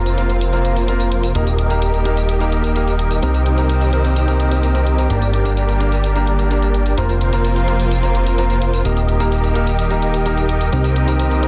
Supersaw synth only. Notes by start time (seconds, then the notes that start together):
Already playing: F4 A#4 C5
1.35 G4 A#4 D#5
3.23 C4 D#4 G4 A#4 D#5
5.10 G4 A#4 D5
6.98 F4 A#4 C5
8.85 G4 A#4 D#5
10.73 C4 D#4 G4 A#4 D#5